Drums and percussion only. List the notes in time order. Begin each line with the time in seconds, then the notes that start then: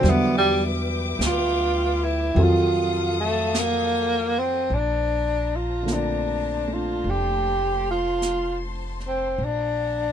0.04 brush sweep, snare
1.21 brush sweep, snare, hi-hat pedal
2.37 brush sweep
3.54 brush sweep, snare, hi-hat pedal
4.71 brush sweep
5.88 brush sweep, snare, hi-hat pedal
7.05 brush sweep
8.22 brush sweep, snare, hi-hat pedal
9.00 snare
9.39 brush sweep